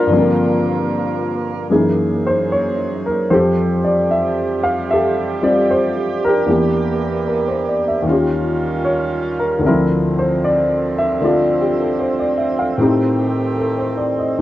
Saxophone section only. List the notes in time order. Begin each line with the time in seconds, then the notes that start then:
Already playing: G3 A#3 F4
0.10 C4 A#4
1.69 F#3 D#4 G#4
3.30 F3 G3 G4
6.45 E3 A#3 D4
8.04 D#3 G3 C#4 F4
9.63 D3 F3 C4
12.77 D#3 A3 G4
14.36 D3 F#3 D#4